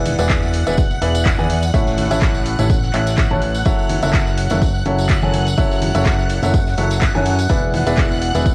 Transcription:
Already playing: E1 E3 E4 G#4 B4 D5 E5 F#5 F#6
0.06 closed hi-hat, open hi-hat, high conga
0.19 E1 E3 E4 G#4 B4 D5 E5, closed hi-hat, tambourine
0.30 kick, snare, clap, closed hi-hat, tambourine
0.43 tambourine
0.53 closed hi-hat, open hi-hat
0.66 E1 E3 E4 G#4 B4 D5 E5, snare, closed hi-hat, tambourine, high conga
0.77 kick, closed hi-hat, tambourine
0.91 tambourine
1.02 E1 E3 E4 G#4 B4 D5 E5, closed hi-hat, open hi-hat
1.15 closed hi-hat, tambourine
1.25 kick, snare, clap, closed hi-hat, tambourine
1.38 E2 E3 E4 G#4 B4 D5 G#5, tambourine, high conga
1.50 closed hi-hat, open hi-hat
1.62 closed hi-hat, tambourine
1.74 A1 A2 C#4 E4 A4 C#5 E5, kick, closed hi-hat, tambourine
1.86 snare, tambourine
1.97 open hi-hat, high conga
2.11 A1 A2 C#4 E4 A4 C#5 E5, closed hi-hat, tambourine
2.22 kick, snare, clap, closed hi-hat, tambourine
2.34 tambourine
2.46 closed hi-hat, open hi-hat
2.59 A1 A2 C#4 E4 A4 C#5 E5, snare, closed hi-hat, tambourine, high conga
2.70 kick, closed hi-hat, tambourine
2.83 snare, tambourine
2.94 A1 A2 C#4 E4 A4 C#5 E5, clap, closed hi-hat, open hi-hat
3.07 snare, closed hi-hat, tambourine
3.17 kick, snare, clap, closed hi-hat, tambourine
3.31 A1 A2 C#4 E4 A4 C#5 A5, tambourine, high conga
3.42 closed hi-hat, open hi-hat
3.54 open hi-hat, tambourine
3.65 F#1 F#3 E4 F#4 A4 C#5 E5 F#5 F#6, kick, closed hi-hat, tambourine
3.79 tambourine
3.90 closed hi-hat, open hi-hat, high conga
4.03 F#1 F#3 E4 F#4 A4 C#5 E5, closed hi-hat, tambourine
4.13 kick, snare, clap, closed hi-hat, tambourine
4.27 tambourine
4.38 closed hi-hat, open hi-hat
4.50 F#1 F#3 E4 F#4 A4 C#5 E5, snare, closed hi-hat, tambourine, high conga
4.62 kick, closed hi-hat, tambourine
4.75 tambourine
4.85 F#1 F#3 E4 F#4 A4 C#5 E5, closed hi-hat, open hi-hat
4.98 closed hi-hat, tambourine
5.09 kick, snare, clap, closed hi-hat, tambourine
5.22 F#1 F#3 E4 F#4 A4 C#5 G#5, tambourine, high conga
5.34 closed hi-hat, open hi-hat
5.47 closed hi-hat, tambourine
5.58 F#1 F#3 E4 F#4 A4 C#5 E5, kick, closed hi-hat, tambourine
5.71 snare, tambourine
5.82 open hi-hat, high conga
5.95 F#1 F#3 E4 F#4 A4 C#5 E5, closed hi-hat, tambourine
6.05 kick, snare, clap, closed hi-hat, tambourine
6.19 tambourine
6.29 closed hi-hat, open hi-hat
6.42 F#1 F#3 E4 F#4 A4 C#5 E5, snare, closed hi-hat, tambourine, high conga
6.54 kick, closed hi-hat, tambourine
6.66 snare, tambourine
6.78 F#1 F#3 E4 F#4 A4 C#5 E5, closed hi-hat, open hi-hat
6.91 snare, closed hi-hat, tambourine
7.01 kick, snare, clap, closed hi-hat, tambourine
7.15 F#2 F#3 E4 F#4 A4 C#5 G#5, tambourine, high conga
7.26 closed hi-hat, open hi-hat
7.39 open hi-hat, tambourine
7.49 E1 E3 E4 G#4 B4 D5 E5, kick, closed hi-hat, tambourine
7.63 tambourine
7.74 closed hi-hat, open hi-hat, high conga
7.86 E1 E3 E4 G#4 B4 D5 E5, closed hi-hat, tambourine
7.97 kick, snare, clap, closed hi-hat, tambourine
8.11 tambourine
8.22 closed hi-hat, open hi-hat
8.34 E1 E3 E4 G#4 B4 D5 E5, snare, closed hi-hat, tambourine, high conga
8.46 kick, closed hi-hat, tambourine

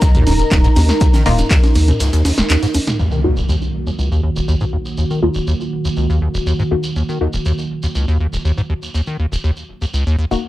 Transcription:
Already playing: D#4 A#4 A#5
0.02 C#2, kick, closed hi-hat, shaker, shekere
0.15 D#2, closed hi-hat, mid tom, shekere
0.27 D#1 D#2, open hi-hat, high conga, shaker
0.39 D#1, closed hi-hat, shekere
0.51 D#1 D#2, kick, snare, clap, closed hi-hat, high conga, shaker, shekere
0.64 G#2, closed hi-hat, shekere
0.76 D#2, snare, open hi-hat, high conga, shaker
0.89 snare, closed hi-hat, shekere
1.00 D#2, kick, closed hi-hat, shaker, shekere
1.13 D#3, snare, closed hi-hat, high conga, shekere, shaker
1.26 D#1 D#2 A#3 D#4 F4, snare, mid tom, open hi-hat
1.38 D#1, closed hi-hat, high conga, shekere, shaker
1.50 D#2, kick, snare, clap, closed hi-hat, shekere, shaker
1.63 snare, closed hi-hat, high conga, shekere
1.75 D#2, snare, open hi-hat, shaker
1.88 D#2, closed hi-hat, mid tom, high conga, shekere
2.00 C#2, snare, closed hi-hat, shekere, shaker
2.13 D#2, closed hi-hat, shekere
2.25 D#2, snare, open hi-hat, high conga, shaker
2.38 D#1, snare, closed hi-hat, shekere
2.50 D#2, snare, clap, closed hi-hat, high conga, shekere, shaker
2.63 G#2, snare, closed hi-hat, shekere
2.74 D#2, open hi-hat, high conga, shaker
2.87 snare, closed hi-hat, mid tom, shekere
2.99 D#2 D#3 A#3 F#4, crash, impact, shekere
3.11 D#3, shekere
3.24 D#2 A#3 D#4 F#4
3.37 D#1, shekere
3.49 D#2, shekere
3.62 shekere
3.87 D#2, shekere
3.99 C#2, shekere
4.11 D#2, shekere
4.23 D#2
4.36 D#1, shekere
4.48 D#2, shekere
4.61 G#2, shekere
4.73 D#2
4.85 shekere
4.97 D#2, shekere
5.10 D#3, shekere
5.23 D#2 A#3 D#4 F4
5.34 D#1, shekere
5.47 D#2, shekere
5.61 shekere
5.85 D#2, shekere
5.96 C#2, shekere
6.10 D#2, shekere
6.22 D#2
6.35 D#1, shekere
6.47 D#2, shekere
6.59 G#2, shekere
6.71 D#2 A#3 D#4 F#4
6.83 shekere
6.96 D#2, shekere
7.09 D#3, shekere
7.21 D#2 A#3 D#4 F#4
7.33 D#1, shekere
7.45 D#2, shekere
7.58 shekere
7.83 D#2, shekere
7.95 C#2, shekere
8.08 D#2, shekere
8.20 D#2
8.33 D#1, shekere
8.45 D#2, shekere
8.57 G#2, shekere
8.70 D#2
8.83 shekere
8.94 D#2, shekere
9.07 D#3, shekere
9.19 D#2
9.32 D#1, shekere
9.44 D#2, shekere
9.56 shekere
9.82 D#2, shekere
9.94 C#2, shekere
10.06 D#2, shekere
10.31 D#1 A#3 D#4 F#4, shekere

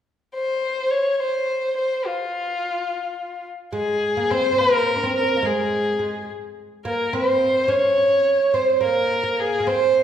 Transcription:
0.34 C5
0.91 C#5
1.13 C#5
1.20 C5
1.77 C5
2.06 F4
3.73 G#3 G#4
4.17 A#3
4.31 C4 C5
4.53 C4
4.58 A#3 A#4
4.96 C#4
5.03 C4
5.17 A#4
5.36 A#3
5.43 G#3 G#4
5.99 G#3
6.85 A#3 A#4
7.13 C4 C5
7.68 C#4 C#5
8.54 C4 C5
8.81 A#3 A#4
9.23 A#3
9.40 G#4
9.60 A#3
9.67 C4 C5

